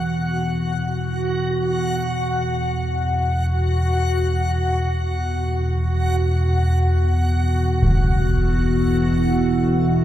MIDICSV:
0, 0, Header, 1, 5, 480
1, 0, Start_track
1, 0, Tempo, 500000
1, 9642, End_track
2, 0, Start_track
2, 0, Title_t, "Ambient pad"
2, 0, Program_c, 0, 92
2, 7517, Note_on_c, 0, 64, 68
2, 7877, Note_on_c, 0, 78, 83
2, 9137, Note_on_c, 0, 76, 77
2, 9642, Note_off_c, 0, 64, 0
2, 9642, Note_off_c, 0, 76, 0
2, 9642, Note_off_c, 0, 78, 0
2, 9642, End_track
3, 0, Start_track
3, 0, Title_t, "Synth texture"
3, 0, Program_c, 1, 99
3, 0, Note_on_c, 1, 66, 68
3, 0, Note_on_c, 1, 78, 67
3, 7497, Note_on_c, 1, 69, 68
3, 7549, Note_off_c, 1, 78, 0
3, 9642, Note_off_c, 1, 66, 0
3, 9642, Note_off_c, 1, 69, 0
3, 9642, End_track
4, 0, Start_track
4, 0, Title_t, "Synth drone"
4, 0, Program_c, 2, 95
4, 0, Note_on_c, 2, 40, 72
4, 0, Note_on_c, 2, 47, 70
4, 9642, Note_off_c, 2, 40, 0
4, 9642, Note_off_c, 2, 47, 0
4, 9642, End_track
5, 0, Start_track
5, 0, Title_t, "Drums"
5, 7510, Note_on_c, 9, 35, 77
5, 7606, Note_off_c, 9, 35, 0
5, 9642, End_track
0, 0, End_of_file